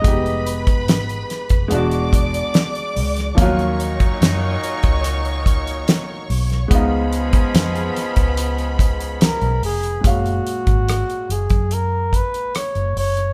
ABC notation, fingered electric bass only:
X:1
M:4/4
L:1/16
Q:1/4=72
K:F#
V:1 name="Fingered electric bass" clef=bass
=F,,,4 _A,,,2 z F,,, =E,,,4 z2 C,,2 | D,,4 F,,2 z C,,4- C,, z2 B,,,2 | C,,4 E,,2 z C,,6 B,,, E,,,2 | F,,,2 z G,,,2 z F,,, F,,4 z2 F,,, F,,,2 |]